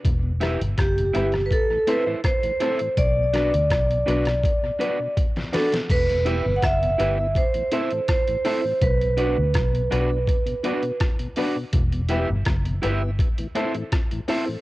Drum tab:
CC |----------------|----------------|x---------------|----------------|
HH |x-xxxxxxx-x-xxxx|x-xxxxxxx-x-xxox|xxx-xxx-xxxxxxo-|xxx-xxx-xxxxxxo-|
SD |--r-r--r----r---|--r-r--r-----ooo|----r-------r---|----r-------r---|
BD |o---o---o---o---|o---o---o---o---|o---o---o---o---|o---o---o---o---|

CC |----------------|
HH |xxx-xxx-xxxxxxo-|
SD |----r-------r---|
BD |o---o---o---o---|